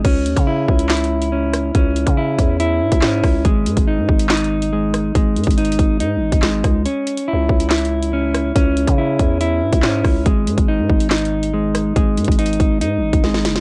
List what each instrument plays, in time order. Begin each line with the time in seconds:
0.05 808-style bass C#2, clean electric guitar C#4, kick, closed hi-hat, crash
0.26 808-style bass D#2, closed hi-hat
0.36 808-style bass C#3, kick, closed hi-hat
0.47 clean electric guitar E4
0.68 808-style bass C#2, kick
0.79 closed hi-hat
0.89 clean electric guitar E4, snare, clap, closed hi-hat
0.97 closed hi-hat
1.04 closed hi-hat
1.22 closed hi-hat
1.32 clean electric guitar C#4
1.53 cross-stick, closed hi-hat
1.75 808-style bass C#2, clean electric guitar C#4, kick, closed hi-hat
1.96 closed hi-hat
2.07 808-style bass C#3, kick, closed hi-hat
2.17 clean electric guitar E4
2.39 808-style bass E2, kick, closed hi-hat
2.60 clean electric guitar E4, closed hi-hat
2.81 808-style bass G#2
2.92 808-style bass C#2, kick, closed hi-hat
3.02 808-style bass G#2, clean electric guitar C#4, snare, clap
3.24 808-style bass C#2, kick, cross-stick, open hi-hat
3.45 808-style bass G#1, clean electric guitar G#3, kick, closed hi-hat
3.66 808-style bass G#2, closed hi-hat
3.77 808-style bass G#1, kick, closed hi-hat
3.88 clean electric guitar D#4
3.98 808-style bass G#2
4.09 808-style bass G#1, kick
4.19 closed hi-hat
4.29 clean electric guitar D#4, snare, clap, closed hi-hat
4.37 closed hi-hat
4.44 closed hi-hat
4.62 closed hi-hat
4.73 clean electric guitar G#3
4.94 cross-stick, closed hi-hat
5.15 808-style bass G#1, clean electric guitar G#3, kick, closed hi-hat
5.36 808-style bass G#2, closed hi-hat
5.44 808-style bass G#1, kick, closed hi-hat
5.51 closed hi-hat
5.58 clean electric guitar D#4, closed hi-hat
5.65 closed hi-hat
5.72 closed hi-hat
5.79 808-style bass G#1, kick, closed hi-hat
6.00 808-style bass G#2, clean electric guitar D#4, closed hi-hat
6.16 808-style bass G#1
6.32 808-style bass G#1, kick, closed hi-hat
6.42 808-style bass G#1, clean electric guitar G#3, snare, clap
6.64 808-style bass C#2, kick, cross-stick, closed hi-hat
6.85 clean electric guitar C#4, closed hi-hat
7.07 closed hi-hat
7.17 closed hi-hat
7.28 clean electric guitar E4
7.33 808-style bass C#2
7.49 808-style bass C#2, kick
7.60 closed hi-hat
7.70 clean electric guitar E4, snare, clap, closed hi-hat
7.78 closed hi-hat
7.85 closed hi-hat
8.02 closed hi-hat
8.13 clean electric guitar C#4
8.34 cross-stick, closed hi-hat
8.55 808-style bass C#2, clean electric guitar C#4, kick, closed hi-hat
8.77 closed hi-hat
8.87 808-style bass C#3, kick, closed hi-hat
8.98 clean electric guitar E4
9.19 808-style bass E2, kick, closed hi-hat
9.41 clean electric guitar E4, closed hi-hat
9.62 808-style bass G#2
9.73 808-style bass C#2, kick, closed hi-hat
9.83 808-style bass G#2, clean electric guitar C#4, snare, clap
10.05 808-style bass C#2, kick, cross-stick, open hi-hat
10.26 808-style bass G#1, clean electric guitar G#3, kick, closed hi-hat
10.47 808-style bass G#2, closed hi-hat
10.58 808-style bass G#1, kick, closed hi-hat
10.68 clean electric guitar D#4
10.79 808-style bass G#2
10.90 808-style bass G#1, kick
11.00 closed hi-hat
11.10 clean electric guitar D#4, snare, clap, closed hi-hat
11.18 closed hi-hat
11.25 closed hi-hat
11.43 closed hi-hat
11.54 clean electric guitar G#3
11.75 cross-stick, closed hi-hat
11.96 808-style bass G#1, clean electric guitar G#3, kick, closed hi-hat
12.17 808-style bass G#2, closed hi-hat
12.25 808-style bass G#1, kick, closed hi-hat
12.32 closed hi-hat
12.39 clean electric guitar D#4, closed hi-hat
12.46 closed hi-hat
12.53 closed hi-hat
12.60 808-style bass G#1, kick, closed hi-hat
12.81 808-style bass G#2, clean electric guitar D#4, closed hi-hat
12.97 808-style bass G#1
13.13 808-style bass G#1, kick, closed hi-hat
13.24 808-style bass G#1, clean electric guitar G#3, snare
13.34 snare
13.45 808-style bass F#1, snare, closed hi-hat
13.56 808-style bass G#1, snare